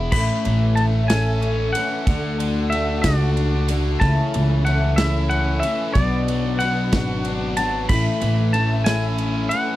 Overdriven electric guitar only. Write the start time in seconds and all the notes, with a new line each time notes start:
Already playing: B2 B3 E4
0.13 A2
0.46 E3
0.77 A3
1.10 A4
1.41 C#4
1.75 E3
2.07 D3
2.39 D3
2.72 A3
3.05 F#4
3.36 D4
3.70 D3
4.01 C#3
4.34 E3
4.66 A3
5.00 E4
5.33 C#4
5.64 E3
5.96 B2
6.30 F#3
6.61 B3
6.94 F#4
7.26 D4
7.59 F#3
7.91 A2
8.21 E3
8.54 A3
8.87 E4
9.20 C#4
9.53 E3